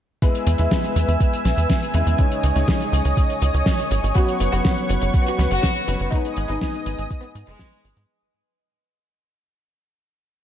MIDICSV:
0, 0, Header, 1, 6, 480
1, 0, Start_track
1, 0, Key_signature, 5, "minor"
1, 0, Tempo, 491803
1, 217, Time_signature, 4, 2, 24, 8
1, 10185, End_track
2, 0, Start_track
2, 0, Title_t, "Analog synth pad"
2, 0, Program_c, 0, 89
2, 216, Note_on_c, 0, 76, 69
2, 217, Note_on_c, 0, 71, 77
2, 218, Note_on_c, 0, 80, 70
2, 218, Note_on_c, 0, 88, 86
2, 2117, Note_off_c, 0, 71, 0
2, 2117, Note_off_c, 0, 76, 0
2, 2118, Note_off_c, 0, 88, 0
2, 2137, Note_on_c, 0, 75, 69
2, 2138, Note_on_c, 0, 73, 79
2, 2138, Note_on_c, 0, 87, 85
2, 4019, Note_off_c, 0, 80, 0
2, 4038, Note_off_c, 0, 75, 0
2, 4038, Note_off_c, 0, 87, 0
2, 4059, Note_on_c, 0, 71, 80
2, 4060, Note_on_c, 0, 78, 69
2, 4061, Note_on_c, 0, 85, 83
2, 5939, Note_off_c, 0, 73, 0
2, 5959, Note_off_c, 0, 78, 0
2, 5959, Note_off_c, 0, 85, 0
2, 5977, Note_on_c, 0, 80, 71
2, 5977, Note_on_c, 0, 87, 84
2, 5978, Note_on_c, 0, 75, 71
2, 7859, Note_off_c, 0, 71, 0
2, 7877, Note_off_c, 0, 80, 0
2, 7877, Note_off_c, 0, 87, 0
2, 7878, Note_off_c, 0, 75, 0
2, 10185, End_track
3, 0, Start_track
3, 0, Title_t, "Violin section"
3, 0, Program_c, 1, 48
3, 4056, Note_on_c, 1, 66, 95
3, 4312, Note_off_c, 1, 66, 0
3, 4415, Note_on_c, 1, 66, 93
3, 4671, Note_off_c, 1, 66, 0
3, 5136, Note_on_c, 1, 66, 91
3, 5306, Note_off_c, 1, 66, 0
3, 5373, Note_on_c, 1, 66, 98
3, 5879, Note_off_c, 1, 66, 0
3, 5975, Note_on_c, 1, 63, 95
3, 6231, Note_off_c, 1, 63, 0
3, 6336, Note_on_c, 1, 63, 91
3, 6592, Note_off_c, 1, 63, 0
3, 7055, Note_on_c, 1, 59, 88
3, 7226, Note_off_c, 1, 59, 0
3, 7293, Note_on_c, 1, 56, 97
3, 7799, Note_off_c, 1, 56, 0
3, 10185, End_track
4, 0, Start_track
4, 0, Title_t, "Grand piano"
4, 0, Program_c, 2, 0
4, 217, Note_on_c, 2, 56, 87
4, 217, Note_on_c, 2, 59, 81
4, 217, Note_on_c, 2, 64, 81
4, 217, Note_on_c, 2, 71, 94
4, 548, Note_off_c, 2, 56, 0
4, 548, Note_off_c, 2, 59, 0
4, 548, Note_off_c, 2, 64, 0
4, 548, Note_off_c, 2, 71, 0
4, 576, Note_on_c, 2, 56, 89
4, 576, Note_on_c, 2, 59, 81
4, 576, Note_on_c, 2, 64, 82
4, 576, Note_on_c, 2, 71, 99
4, 1867, Note_off_c, 2, 56, 0
4, 1867, Note_off_c, 2, 59, 0
4, 1867, Note_off_c, 2, 64, 0
4, 1867, Note_off_c, 2, 71, 0
4, 1896, Note_on_c, 2, 49, 92
4, 1896, Note_on_c, 2, 56, 85
4, 1896, Note_on_c, 2, 59, 82
4, 1896, Note_on_c, 2, 64, 85
4, 1896, Note_on_c, 2, 71, 101
4, 2107, Note_off_c, 2, 49, 0
4, 2107, Note_off_c, 2, 56, 0
4, 2107, Note_off_c, 2, 59, 0
4, 2107, Note_off_c, 2, 64, 0
4, 2107, Note_off_c, 2, 71, 0
4, 2135, Note_on_c, 2, 56, 67
4, 2135, Note_on_c, 2, 61, 66
4, 2135, Note_on_c, 2, 63, 66
4, 2135, Note_on_c, 2, 73, 78
4, 2136, Note_on_c, 2, 49, 74
4, 2467, Note_off_c, 2, 49, 0
4, 2467, Note_off_c, 2, 56, 0
4, 2467, Note_off_c, 2, 61, 0
4, 2467, Note_off_c, 2, 63, 0
4, 2467, Note_off_c, 2, 73, 0
4, 2496, Note_on_c, 2, 49, 91
4, 2496, Note_on_c, 2, 56, 81
4, 2496, Note_on_c, 2, 61, 86
4, 2496, Note_on_c, 2, 63, 83
4, 2496, Note_on_c, 2, 73, 101
4, 4027, Note_off_c, 2, 49, 0
4, 4027, Note_off_c, 2, 61, 0
4, 4027, Note_off_c, 2, 63, 0
4, 4027, Note_off_c, 2, 73, 0
4, 4028, Note_off_c, 2, 56, 0
4, 4056, Note_on_c, 2, 59, 85
4, 4056, Note_on_c, 2, 71, 100
4, 4057, Note_on_c, 2, 54, 89
4, 4057, Note_on_c, 2, 61, 83
4, 4387, Note_off_c, 2, 71, 0
4, 4388, Note_off_c, 2, 54, 0
4, 4388, Note_off_c, 2, 59, 0
4, 4388, Note_off_c, 2, 61, 0
4, 4416, Note_on_c, 2, 54, 93
4, 4416, Note_on_c, 2, 59, 85
4, 4416, Note_on_c, 2, 61, 82
4, 4416, Note_on_c, 2, 71, 103
4, 5707, Note_off_c, 2, 54, 0
4, 5707, Note_off_c, 2, 59, 0
4, 5707, Note_off_c, 2, 61, 0
4, 5707, Note_off_c, 2, 71, 0
4, 5737, Note_on_c, 2, 54, 91
4, 5737, Note_on_c, 2, 59, 87
4, 5737, Note_on_c, 2, 61, 87
4, 5737, Note_on_c, 2, 71, 100
4, 5948, Note_off_c, 2, 54, 0
4, 5948, Note_off_c, 2, 59, 0
4, 5948, Note_off_c, 2, 61, 0
4, 5948, Note_off_c, 2, 71, 0
4, 5976, Note_on_c, 2, 44, 72
4, 5976, Note_on_c, 2, 56, 69
4, 5976, Note_on_c, 2, 59, 68
4, 5976, Note_on_c, 2, 63, 66
4, 5977, Note_on_c, 2, 71, 85
4, 6307, Note_off_c, 2, 44, 0
4, 6308, Note_off_c, 2, 56, 0
4, 6308, Note_off_c, 2, 59, 0
4, 6308, Note_off_c, 2, 63, 0
4, 6308, Note_off_c, 2, 71, 0
4, 6336, Note_on_c, 2, 44, 95
4, 6336, Note_on_c, 2, 56, 85
4, 6336, Note_on_c, 2, 59, 84
4, 6336, Note_on_c, 2, 63, 84
4, 6336, Note_on_c, 2, 71, 102
4, 7867, Note_off_c, 2, 44, 0
4, 7867, Note_off_c, 2, 56, 0
4, 7867, Note_off_c, 2, 59, 0
4, 7867, Note_off_c, 2, 63, 0
4, 7867, Note_off_c, 2, 71, 0
4, 10185, End_track
5, 0, Start_track
5, 0, Title_t, "Analog synth bass"
5, 0, Program_c, 3, 38
5, 456, Note_on_c, 3, 40, 100
5, 544, Note_off_c, 3, 40, 0
5, 577, Note_on_c, 3, 40, 79
5, 664, Note_off_c, 3, 40, 0
5, 936, Note_on_c, 3, 40, 92
5, 1024, Note_off_c, 3, 40, 0
5, 1056, Note_on_c, 3, 40, 76
5, 1144, Note_off_c, 3, 40, 0
5, 1416, Note_on_c, 3, 35, 90
5, 1504, Note_off_c, 3, 35, 0
5, 1537, Note_on_c, 3, 40, 78
5, 1624, Note_off_c, 3, 40, 0
5, 1896, Note_on_c, 3, 40, 92
5, 1984, Note_off_c, 3, 40, 0
5, 2016, Note_on_c, 3, 40, 78
5, 2104, Note_off_c, 3, 40, 0
5, 2376, Note_on_c, 3, 37, 98
5, 2464, Note_off_c, 3, 37, 0
5, 2496, Note_on_c, 3, 37, 80
5, 2584, Note_off_c, 3, 37, 0
5, 2856, Note_on_c, 3, 37, 97
5, 2944, Note_off_c, 3, 37, 0
5, 2977, Note_on_c, 3, 37, 76
5, 3064, Note_off_c, 3, 37, 0
5, 3336, Note_on_c, 3, 37, 94
5, 3424, Note_off_c, 3, 37, 0
5, 3456, Note_on_c, 3, 37, 77
5, 3544, Note_off_c, 3, 37, 0
5, 3816, Note_on_c, 3, 32, 91
5, 3904, Note_off_c, 3, 32, 0
5, 3937, Note_on_c, 3, 32, 77
5, 4024, Note_off_c, 3, 32, 0
5, 4297, Note_on_c, 3, 30, 97
5, 4384, Note_off_c, 3, 30, 0
5, 4417, Note_on_c, 3, 30, 82
5, 4504, Note_off_c, 3, 30, 0
5, 4777, Note_on_c, 3, 30, 93
5, 4865, Note_off_c, 3, 30, 0
5, 4897, Note_on_c, 3, 30, 77
5, 4985, Note_off_c, 3, 30, 0
5, 5257, Note_on_c, 3, 37, 89
5, 5345, Note_off_c, 3, 37, 0
5, 5377, Note_on_c, 3, 30, 79
5, 5465, Note_off_c, 3, 30, 0
5, 5737, Note_on_c, 3, 30, 94
5, 5824, Note_off_c, 3, 30, 0
5, 5857, Note_on_c, 3, 30, 80
5, 5945, Note_off_c, 3, 30, 0
5, 6216, Note_on_c, 3, 32, 96
5, 6304, Note_off_c, 3, 32, 0
5, 6335, Note_on_c, 3, 32, 81
5, 6424, Note_off_c, 3, 32, 0
5, 6695, Note_on_c, 3, 32, 100
5, 6784, Note_off_c, 3, 32, 0
5, 6816, Note_on_c, 3, 32, 78
5, 6904, Note_off_c, 3, 32, 0
5, 7175, Note_on_c, 3, 44, 89
5, 7264, Note_off_c, 3, 44, 0
5, 7296, Note_on_c, 3, 30, 77
5, 7384, Note_off_c, 3, 30, 0
5, 7656, Note_on_c, 3, 32, 95
5, 7744, Note_off_c, 3, 32, 0
5, 7776, Note_on_c, 3, 44, 81
5, 7864, Note_off_c, 3, 44, 0
5, 10185, End_track
6, 0, Start_track
6, 0, Title_t, "Drums"
6, 217, Note_on_c, 9, 36, 114
6, 218, Note_on_c, 9, 42, 76
6, 314, Note_off_c, 9, 36, 0
6, 315, Note_off_c, 9, 42, 0
6, 340, Note_on_c, 9, 42, 57
6, 437, Note_off_c, 9, 42, 0
6, 455, Note_on_c, 9, 42, 89
6, 552, Note_off_c, 9, 42, 0
6, 568, Note_on_c, 9, 42, 55
6, 665, Note_off_c, 9, 42, 0
6, 697, Note_on_c, 9, 36, 102
6, 700, Note_on_c, 9, 42, 72
6, 701, Note_on_c, 9, 38, 121
6, 794, Note_off_c, 9, 36, 0
6, 798, Note_off_c, 9, 38, 0
6, 798, Note_off_c, 9, 42, 0
6, 821, Note_on_c, 9, 42, 59
6, 918, Note_off_c, 9, 42, 0
6, 940, Note_on_c, 9, 42, 90
6, 1038, Note_off_c, 9, 42, 0
6, 1061, Note_on_c, 9, 42, 53
6, 1158, Note_off_c, 9, 42, 0
6, 1176, Note_on_c, 9, 36, 114
6, 1178, Note_on_c, 9, 42, 75
6, 1274, Note_off_c, 9, 36, 0
6, 1276, Note_off_c, 9, 42, 0
6, 1302, Note_on_c, 9, 42, 53
6, 1399, Note_off_c, 9, 42, 0
6, 1417, Note_on_c, 9, 42, 90
6, 1419, Note_on_c, 9, 38, 63
6, 1514, Note_off_c, 9, 42, 0
6, 1517, Note_off_c, 9, 38, 0
6, 1541, Note_on_c, 9, 42, 54
6, 1638, Note_off_c, 9, 42, 0
6, 1655, Note_on_c, 9, 42, 78
6, 1656, Note_on_c, 9, 36, 105
6, 1661, Note_on_c, 9, 38, 102
6, 1752, Note_off_c, 9, 42, 0
6, 1754, Note_off_c, 9, 36, 0
6, 1759, Note_off_c, 9, 38, 0
6, 1785, Note_on_c, 9, 42, 55
6, 1882, Note_off_c, 9, 42, 0
6, 1890, Note_on_c, 9, 42, 96
6, 1988, Note_off_c, 9, 42, 0
6, 2019, Note_on_c, 9, 42, 58
6, 2116, Note_off_c, 9, 42, 0
6, 2130, Note_on_c, 9, 42, 71
6, 2136, Note_on_c, 9, 36, 118
6, 2228, Note_off_c, 9, 42, 0
6, 2233, Note_off_c, 9, 36, 0
6, 2260, Note_on_c, 9, 42, 52
6, 2357, Note_off_c, 9, 42, 0
6, 2376, Note_on_c, 9, 42, 89
6, 2474, Note_off_c, 9, 42, 0
6, 2495, Note_on_c, 9, 42, 55
6, 2593, Note_off_c, 9, 42, 0
6, 2616, Note_on_c, 9, 36, 106
6, 2620, Note_on_c, 9, 42, 78
6, 2622, Note_on_c, 9, 38, 121
6, 2713, Note_off_c, 9, 36, 0
6, 2717, Note_off_c, 9, 42, 0
6, 2719, Note_off_c, 9, 38, 0
6, 2738, Note_on_c, 9, 42, 60
6, 2835, Note_off_c, 9, 42, 0
6, 2863, Note_on_c, 9, 42, 104
6, 2961, Note_off_c, 9, 42, 0
6, 2977, Note_on_c, 9, 42, 57
6, 3074, Note_off_c, 9, 42, 0
6, 3096, Note_on_c, 9, 36, 122
6, 3097, Note_on_c, 9, 42, 81
6, 3193, Note_off_c, 9, 36, 0
6, 3194, Note_off_c, 9, 42, 0
6, 3220, Note_on_c, 9, 42, 57
6, 3318, Note_off_c, 9, 42, 0
6, 3335, Note_on_c, 9, 42, 102
6, 3433, Note_off_c, 9, 42, 0
6, 3459, Note_on_c, 9, 42, 53
6, 3556, Note_off_c, 9, 42, 0
6, 3573, Note_on_c, 9, 38, 114
6, 3576, Note_on_c, 9, 36, 103
6, 3583, Note_on_c, 9, 42, 77
6, 3671, Note_off_c, 9, 38, 0
6, 3674, Note_off_c, 9, 36, 0
6, 3680, Note_off_c, 9, 42, 0
6, 3702, Note_on_c, 9, 42, 51
6, 3800, Note_off_c, 9, 42, 0
6, 3816, Note_on_c, 9, 42, 90
6, 3914, Note_off_c, 9, 42, 0
6, 3941, Note_on_c, 9, 42, 56
6, 4039, Note_off_c, 9, 42, 0
6, 4056, Note_on_c, 9, 36, 122
6, 4061, Note_on_c, 9, 42, 76
6, 4154, Note_off_c, 9, 36, 0
6, 4158, Note_off_c, 9, 42, 0
6, 4179, Note_on_c, 9, 42, 52
6, 4276, Note_off_c, 9, 42, 0
6, 4298, Note_on_c, 9, 42, 95
6, 4395, Note_off_c, 9, 42, 0
6, 4420, Note_on_c, 9, 42, 59
6, 4517, Note_off_c, 9, 42, 0
6, 4536, Note_on_c, 9, 36, 109
6, 4537, Note_on_c, 9, 38, 123
6, 4542, Note_on_c, 9, 42, 76
6, 4634, Note_off_c, 9, 36, 0
6, 4634, Note_off_c, 9, 38, 0
6, 4640, Note_off_c, 9, 42, 0
6, 4659, Note_on_c, 9, 42, 51
6, 4756, Note_off_c, 9, 42, 0
6, 4777, Note_on_c, 9, 42, 92
6, 4874, Note_off_c, 9, 42, 0
6, 4894, Note_on_c, 9, 42, 58
6, 4992, Note_off_c, 9, 42, 0
6, 5016, Note_on_c, 9, 36, 125
6, 5020, Note_on_c, 9, 42, 80
6, 5114, Note_off_c, 9, 36, 0
6, 5118, Note_off_c, 9, 42, 0
6, 5138, Note_on_c, 9, 42, 53
6, 5235, Note_off_c, 9, 42, 0
6, 5257, Note_on_c, 9, 38, 63
6, 5260, Note_on_c, 9, 42, 93
6, 5354, Note_off_c, 9, 38, 0
6, 5357, Note_off_c, 9, 42, 0
6, 5375, Note_on_c, 9, 42, 56
6, 5473, Note_off_c, 9, 42, 0
6, 5491, Note_on_c, 9, 42, 72
6, 5496, Note_on_c, 9, 36, 110
6, 5497, Note_on_c, 9, 38, 122
6, 5589, Note_off_c, 9, 42, 0
6, 5594, Note_off_c, 9, 36, 0
6, 5595, Note_off_c, 9, 38, 0
6, 5621, Note_on_c, 9, 42, 57
6, 5719, Note_off_c, 9, 42, 0
6, 5738, Note_on_c, 9, 42, 96
6, 5835, Note_off_c, 9, 42, 0
6, 5851, Note_on_c, 9, 42, 50
6, 5948, Note_off_c, 9, 42, 0
6, 5976, Note_on_c, 9, 36, 119
6, 5976, Note_on_c, 9, 42, 73
6, 6074, Note_off_c, 9, 36, 0
6, 6074, Note_off_c, 9, 42, 0
6, 6100, Note_on_c, 9, 42, 57
6, 6198, Note_off_c, 9, 42, 0
6, 6213, Note_on_c, 9, 42, 89
6, 6311, Note_off_c, 9, 42, 0
6, 6337, Note_on_c, 9, 42, 52
6, 6435, Note_off_c, 9, 42, 0
6, 6456, Note_on_c, 9, 36, 106
6, 6458, Note_on_c, 9, 38, 116
6, 6464, Note_on_c, 9, 42, 76
6, 6554, Note_off_c, 9, 36, 0
6, 6556, Note_off_c, 9, 38, 0
6, 6562, Note_off_c, 9, 42, 0
6, 6575, Note_on_c, 9, 42, 53
6, 6673, Note_off_c, 9, 42, 0
6, 6697, Note_on_c, 9, 42, 88
6, 6794, Note_off_c, 9, 42, 0
6, 6815, Note_on_c, 9, 42, 51
6, 6913, Note_off_c, 9, 42, 0
6, 6936, Note_on_c, 9, 36, 123
6, 6940, Note_on_c, 9, 42, 67
6, 7034, Note_off_c, 9, 36, 0
6, 7038, Note_off_c, 9, 42, 0
6, 7053, Note_on_c, 9, 42, 52
6, 7151, Note_off_c, 9, 42, 0
6, 7178, Note_on_c, 9, 42, 93
6, 7275, Note_off_c, 9, 42, 0
6, 7291, Note_on_c, 9, 42, 58
6, 7388, Note_off_c, 9, 42, 0
6, 7412, Note_on_c, 9, 38, 114
6, 7416, Note_on_c, 9, 36, 107
6, 7416, Note_on_c, 9, 42, 68
6, 7509, Note_off_c, 9, 38, 0
6, 7513, Note_off_c, 9, 36, 0
6, 7514, Note_off_c, 9, 42, 0
6, 7539, Note_on_c, 9, 42, 51
6, 7637, Note_off_c, 9, 42, 0
6, 7660, Note_on_c, 9, 42, 85
6, 7758, Note_off_c, 9, 42, 0
6, 7776, Note_on_c, 9, 42, 50
6, 7874, Note_off_c, 9, 42, 0
6, 10185, End_track
0, 0, End_of_file